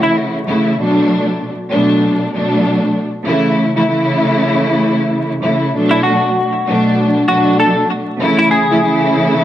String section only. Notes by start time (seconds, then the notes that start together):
Already playing: C#3 E3 A3 E4
0.47 C#3 E3 A3 E4
0.79 B2 F#3 A3 D4
1.70 B2 F#3 A3 D4
2.34 B2 F#3 A3 D4
3.25 C#3 E3 A3 E4
3.75 C#3 E3 A3 E4
3.87 C#3 E3 A3 E4
5.42 C#3 E3 A3 E4
5.74 B2 F#3 A3 D4
6.66 B2 F#3 A3 D4
7.29 B2 F#3 A3 D4
8.20 C#3 E3 A3 E4
8.70 C#3 E3 A3 E4
8.82 C#3 E3 A3 E4